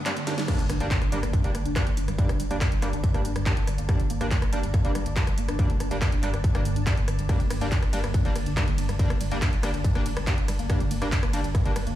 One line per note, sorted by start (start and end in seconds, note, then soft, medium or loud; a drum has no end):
0.00 0.47 G2 medium
0.00 0.47 D3 medium
0.00 riser medium
0.06 0.12 G3 medium
0.06 0.12 A#3 medium
0.06 0.12 D4 medium
0.06 clap loud
0.06 closed hi-hat medium
0.17 0.23 A#3 medium
0.17 closed hi-hat medium
0.27 0.33 G3 medium
0.27 0.33 A#3 medium
0.27 0.33 D4 loud
0.27 0.37 D4 medium
0.27 snare medium
0.27 open hi-hat loud
0.38 0.44 G3 medium
0.38 snare medium
0.38 closed hi-hat medium
0.48 11.95 G2 medium
0.48 11.95 D3 medium
0.48 0.58 G3 medium
0.48 0.58 A#3 medium
0.48 0.58 D4 medium
0.48 kick loud
0.48 cross-stick medium
0.48 closed hi-hat medium
0.48 crash loud
0.48 impact medium
0.59 0.69 G1 medium
0.59 0.65 A#3 medium
0.59 closed hi-hat medium
0.70 0.80 G1 loud
0.70 0.79 D4 medium
0.70 cross-stick medium
0.70 open hi-hat loud
0.80 0.91 G1 medium
0.80 0.86 G3 medium
0.80 0.87 G3 medium
0.80 0.86 A#3 medium
0.80 0.86 D4 loud
0.80 closed hi-hat medium
0.91 0.97 A#3 medium
0.91 kick loud
0.91 clap loud
0.91 closed hi-hat medium
1.02 1.12 G1 medium
1.02 1.11 D4 medium
1.02 cross-stick medium
1.02 closed hi-hat medium
1.12 1.22 G1 loud
1.12 1.19 G3 medium
1.12 1.18 G3 medium
1.12 1.18 A#3 medium
1.12 1.18 D4 loud
1.12 open hi-hat loud
1.23 1.33 G1 medium
1.23 1.29 A#3 medium
1.23 cross-stick medium
1.23 closed hi-hat medium
1.33 1.43 D4 medium
1.33 kick loud
1.33 closed hi-hat medium
1.44 1.54 G1 medium
1.44 1.51 G3 medium
1.44 1.50 G3 medium
1.44 1.50 A#3 medium
1.44 1.50 D4 loud
1.44 closed hi-hat medium
1.55 1.65 G1 loud
1.55 1.61 A#3 medium
1.55 cross-stick medium
1.55 open hi-hat loud
1.65 1.76 G1 medium
1.65 1.75 D4 medium
1.65 closed hi-hat medium
1.76 1.82 G3 medium
1.76 1.82 G3 loud
1.76 1.82 A#3 medium
1.76 1.82 D4 loud
1.76 kick loud
1.76 cross-stick medium
1.76 clap loud
1.76 closed hi-hat medium
1.87 1.97 G1 medium
1.87 1.93 A#3 medium
1.87 closed hi-hat medium
1.97 2.08 G1 loud
1.97 2.07 D4 medium
1.97 open hi-hat loud
2.08 2.18 G1 medium
2.08 2.14 G3 medium
2.08 cross-stick medium
2.08 closed hi-hat medium
2.18 2.28 G3 medium
2.18 2.25 A#3 medium
2.18 2.28 A#3 medium
2.18 2.28 D4 medium
2.18 kick loud
2.18 closed hi-hat medium
2.29 2.39 G1 medium
2.29 2.39 D4 medium
2.29 cross-stick medium
2.29 closed hi-hat medium
2.40 2.50 G1 loud
2.40 2.46 G3 medium
2.40 open hi-hat loud
2.51 2.61 G1 medium
2.51 2.57 G3 medium
2.51 2.57 A#3 medium
2.51 2.57 D4 loud
2.51 closed hi-hat medium
2.61 2.71 D4 medium
2.61 kick loud
2.61 cross-stick medium
2.61 clap loud
2.61 closed hi-hat medium
2.72 2.82 G1 medium
2.72 2.78 G3 medium
2.72 closed hi-hat medium
2.82 2.93 G1 loud
2.82 2.89 G3 medium
2.82 2.89 A#3 medium
2.82 2.88 A#3 medium
2.82 2.88 D4 medium
2.82 cross-stick medium
2.82 clap soft
2.82 open hi-hat loud
2.93 3.03 G1 medium
2.93 3.03 D4 medium
2.93 closed hi-hat medium
3.04 3.10 G3 medium
3.04 kick loud
3.04 closed hi-hat medium
3.14 3.24 G1 medium
3.14 3.20 G3 medium
3.14 3.21 A#3 medium
3.14 3.20 A#3 medium
3.14 3.20 D4 loud
3.14 cross-stick medium
3.14 closed hi-hat medium
3.25 3.35 G1 loud
3.25 3.35 D4 medium
3.25 open hi-hat loud
3.36 3.46 G1 medium
3.36 3.42 G3 medium
3.36 cross-stick medium
3.36 closed hi-hat medium
3.46 3.52 G3 loud
3.46 3.52 A#3 medium
3.46 3.53 A#3 medium
3.46 3.52 D4 loud
3.46 kick loud
3.46 clap loud
3.46 closed hi-hat medium
3.57 3.67 G1 medium
3.57 3.66 D4 medium
3.57 closed hi-hat medium
3.67 3.78 G1 loud
3.67 3.74 G3 medium
3.67 cross-stick medium
3.67 open hi-hat loud
3.78 3.89 G1 medium
3.78 3.85 A#3 medium
3.78 closed hi-hat medium
3.89 3.99 G3 medium
3.89 3.99 A#3 medium
3.89 3.99 D4 medium
3.89 kick loud
3.89 cross-stick medium
3.89 closed hi-hat medium
4.00 4.09 G1 medium
4.00 4.06 G3 medium
4.00 closed hi-hat medium
4.10 4.20 G1 loud
4.10 4.17 A#3 medium
4.10 open hi-hat loud
4.21 4.31 G1 medium
4.21 4.27 G3 medium
4.21 4.27 A#3 medium
4.21 4.27 D4 medium
4.21 4.30 D4 medium
4.21 cross-stick medium
4.21 closed hi-hat medium
4.31 4.38 G3 medium
4.31 kick loud
4.31 clap loud
4.31 closed hi-hat medium
4.42 4.52 G1 medium
4.42 4.48 A#3 medium
4.42 cross-stick medium
4.42 closed hi-hat medium
4.53 4.63 G1 medium
4.53 4.59 G3 medium
4.53 4.59 A#3 medium
4.53 4.59 D4 loud
4.53 4.62 D4 medium
4.53 open hi-hat loud
4.63 4.74 G1 medium
4.63 4.70 G3 medium
4.63 closed hi-hat medium
4.74 4.80 A#3 medium
4.74 kick loud
4.74 cross-stick medium
4.74 closed hi-hat medium
4.85 4.95 G1 medium
4.85 4.91 G3 medium
4.85 4.91 A#3 medium
4.85 4.91 D4 loud
4.85 4.94 D4 medium
4.85 closed hi-hat medium
4.95 5.05 G1 loud
4.95 5.02 G3 medium
4.95 cross-stick medium
4.95 open hi-hat loud
5.06 5.16 G1 medium
5.06 5.12 A#3 medium
5.06 closed hi-hat medium
5.16 5.23 G3 loud
5.16 5.23 A#3 medium
5.16 5.26 D4 medium
5.16 5.23 D4 loud
5.16 kick loud
5.16 clap loud
5.16 closed hi-hat medium
5.27 5.37 G1 medium
5.27 5.33 G3 medium
5.27 cross-stick medium
5.27 closed hi-hat medium
5.38 5.48 G1 loud
5.38 5.44 A#3 medium
5.38 open hi-hat loud
5.48 5.59 G1 medium
5.48 5.58 D4 medium
5.48 cross-stick medium
5.48 closed hi-hat medium
5.59 5.65 G3 medium
5.59 5.69 G3 medium
5.59 5.69 A#3 medium
5.59 5.69 D4 medium
5.59 kick loud
5.59 closed hi-hat medium
5.70 5.80 G1 medium
5.70 5.76 A#3 medium
5.70 closed hi-hat medium
5.80 5.91 G1 loud
5.80 5.90 D4 medium
5.80 cross-stick medium
5.80 open hi-hat loud
5.91 6.01 G1 medium
5.91 5.97 G3 medium
5.91 5.97 A#3 medium
5.91 5.97 D4 loud
5.91 closed hi-hat medium
6.01 6.08 A#3 medium
6.01 kick loud
6.01 cross-stick loud
6.01 clap loud
6.01 closed hi-hat medium
6.12 6.22 G1 medium
6.12 6.22 D4 medium
6.12 closed hi-hat medium
6.23 6.33 G1 loud
6.23 6.29 G3 medium
6.23 6.29 A#3 medium
6.23 6.29 D4 loud
6.23 clap soft
6.23 open hi-hat loud
6.34 6.44 G1 medium
6.34 6.40 A#3 medium
6.34 cross-stick medium
6.34 closed hi-hat medium
6.44 6.54 D4 medium
6.44 kick loud
6.44 closed hi-hat medium
6.55 6.65 G1 medium
6.55 6.61 G3 medium
6.55 6.61 A#3 medium
6.55 6.61 D4 loud
6.55 cross-stick loud
6.55 closed hi-hat medium
6.65 6.76 G1 loud
6.65 6.72 A#3 medium
6.65 open hi-hat loud
6.76 6.86 G1 medium
6.76 6.86 D4 medium
6.76 closed hi-hat medium
6.87 6.93 G3 medium
6.87 6.93 G3 loud
6.87 6.93 A#3 medium
6.87 6.93 D4 loud
6.87 kick loud
6.87 cross-stick medium
6.87 clap loud
6.87 closed hi-hat medium
6.97 7.07 G1 medium
6.97 7.04 A#3 medium
6.97 closed hi-hat medium
7.08 7.18 G1 loud
7.08 7.18 D4 medium
7.08 cross-stick medium
7.08 open hi-hat loud
7.19 7.29 G1 medium
7.19 7.25 G3 medium
7.19 closed hi-hat medium
7.29 7.39 G3 medium
7.29 7.39 A#3 medium
7.29 7.39 D4 medium
7.29 kick loud
7.29 cross-stick medium
7.29 closed hi-hat medium
7.29 ride medium
7.40 7.50 G1 medium
7.40 7.46 A#3 medium
7.40 closed hi-hat medium
7.50 7.61 G1 loud
7.50 7.60 D4 medium
7.50 cross-stick loud
7.50 open hi-hat loud
7.50 ride medium
7.61 7.72 G1 medium
7.61 7.67 G3 medium
7.61 7.68 G3 medium
7.61 7.67 A#3 medium
7.61 7.67 D4 loud
7.61 closed hi-hat medium
7.72 7.78 A#3 medium
7.72 kick loud
7.72 clap loud
7.72 closed hi-hat medium
7.72 ride medium
7.83 7.92 G1 medium
7.83 7.92 D4 medium
7.83 cross-stick medium
7.83 closed hi-hat medium
7.93 8.03 G1 loud
7.93 7.99 G3 medium
7.93 8.00 G3 medium
7.93 7.99 A#3 medium
7.93 7.99 D4 loud
7.93 open hi-hat loud
7.93 ride medium
8.04 8.14 G1 medium
8.04 8.10 A#3 medium
8.04 cross-stick loud
8.04 closed hi-hat soft
8.14 8.24 D4 medium
8.14 kick loud
8.14 closed hi-hat medium
8.14 ride medium
8.25 8.35 G1 medium
8.25 8.31 G3 medium
8.25 8.31 A#3 medium
8.25 8.31 D4 loud
8.25 closed hi-hat medium
8.36 8.46 G1 loud
8.36 8.42 A#3 medium
8.36 cross-stick medium
8.36 open hi-hat loud
8.36 ride medium
8.46 8.57 G1 medium
8.46 8.56 D4 medium
8.46 closed hi-hat medium
8.57 8.63 G3 medium
8.57 8.63 G3 loud
8.57 8.63 A#3 medium
8.57 8.63 D4 loud
8.57 kick loud
8.57 cross-stick loud
8.57 clap loud
8.57 closed hi-hat medium
8.57 ride medium
8.68 8.77 G1 medium
8.68 8.74 A#3 medium
8.68 closed hi-hat medium
8.78 8.88 G1 loud
8.78 8.88 D4 medium
8.78 open hi-hat loud
8.78 ride medium
8.89 8.99 G1 medium
8.89 8.95 G3 medium
8.89 cross-stick medium
8.89 closed hi-hat medium
8.99 9.09 G3 medium
8.99 9.06 A#3 medium
8.99 9.09 A#3 medium
8.99 9.09 D4 medium
8.99 kick loud
8.99 closed hi-hat medium
8.99 ride medium
9.10 9.20 G1 medium
9.10 9.20 D4 medium
9.10 cross-stick loud
9.10 closed hi-hat medium
9.21 9.31 G1 loud
9.21 9.27 G3 medium
9.21 open hi-hat loud
9.21 ride medium
9.31 9.42 G1 medium
9.31 9.37 G3 medium
9.31 9.37 A#3 medium
9.31 9.38 A#3 medium
9.31 9.37 D4 medium
9.31 closed hi-hat medium
9.42 9.52 D4 medium
9.42 kick loud
9.42 cross-stick medium
9.42 clap loud
9.42 closed hi-hat medium
9.42 ride medium
9.53 9.63 G1 medium
9.53 9.59 G3 medium
9.53 closed hi-hat soft
9.63 9.73 G1 medium
9.63 9.69 G3 medium
9.63 9.70 A#3 medium
9.63 9.69 A#3 medium
9.63 9.69 D4 loud
9.63 cross-stick loud
9.63 clap soft
9.63 open hi-hat loud
9.63 ride medium
9.74 9.84 G1 medium
9.74 9.83 D4 medium
9.74 closed hi-hat medium
9.84 9.91 G3 medium
9.84 kick loud
9.84 closed hi-hat medium
9.84 ride medium
9.95 10.05 G1 medium
9.95 10.01 G3 medium
9.95 10.01 A#3 medium
9.95 10.02 A#3 medium
9.95 10.01 D4 loud
9.95 cross-stick medium
9.95 closed hi-hat medium
10.06 10.16 G1 loud
10.06 10.16 D4 medium
10.06 open hi-hat loud
10.06 ride medium
10.17 10.27 G1 medium
10.17 10.23 G3 medium
10.17 cross-stick loud
10.17 closed hi-hat medium
10.27 10.33 G3 loud
10.27 10.34 A#3 medium
10.27 10.33 A#3 medium
10.27 10.33 D4 loud
10.27 kick loud
10.27 clap loud
10.27 closed hi-hat medium
10.27 ride medium
10.38 10.48 G1 medium
10.38 10.47 D4 medium
10.38 closed hi-hat soft
10.48 10.59 G1 loud
10.48 10.55 G3 medium
10.48 cross-stick medium
10.48 open hi-hat loud
10.48 ride medium
10.59 10.69 G1 medium
10.59 10.65 A#3 medium
10.59 closed hi-hat soft
10.70 10.79 G3 medium
10.70 10.79 A#3 medium
10.70 10.79 D4 medium
10.70 kick loud
10.70 cross-stick loud
10.70 closed hi-hat medium
10.70 ride medium
10.80 10.90 G1 medium
10.80 10.87 G3 medium
10.80 closed hi-hat medium
10.91 11.01 G1 loud
10.91 10.97 A#3 medium
10.91 open hi-hat loud
10.91 ride medium
11.02 11.12 G1 medium
11.02 11.08 G3 medium
11.02 11.08 A#3 medium
11.02 11.11 D4 medium
11.02 11.08 D4 loud
11.02 cross-stick medium
11.02 closed hi-hat medium
11.12 11.19 G3 medium
11.12 kick loud
11.12 clap loud
11.12 closed hi-hat medium
11.12 ride medium
11.23 11.33 G1 medium
11.23 11.29 A#3 medium
11.23 cross-stick loud
11.23 closed hi-hat medium
11.33 11.44 G1 loud
11.33 11.40 G3 medium
11.33 11.40 A#3 medium
11.33 11.40 D4 loud
11.33 11.43 D4 medium
11.33 open hi-hat loud
11.33 ride medium
11.44 11.54 G1 medium
11.44 11.51 G3 medium
11.44 closed hi-hat medium
11.55 11.61 A#3 medium
11.55 kick loud
11.55 cross-stick medium
11.55 closed hi-hat medium
11.55 ride medium
11.65 11.75 G1 medium
11.65 11.71 G3 medium
11.65 11.71 A#3 medium
11.65 11.71 D4 loud
11.65 11.75 D4 medium
11.65 closed hi-hat medium
11.76 11.86 G1 loud
11.76 11.83 G3 medium
11.76 cross-stick medium
11.76 open hi-hat loud
11.76 ride medium
11.87 11.95 G1 medium
11.87 11.93 A#3 medium
11.87 closed hi-hat medium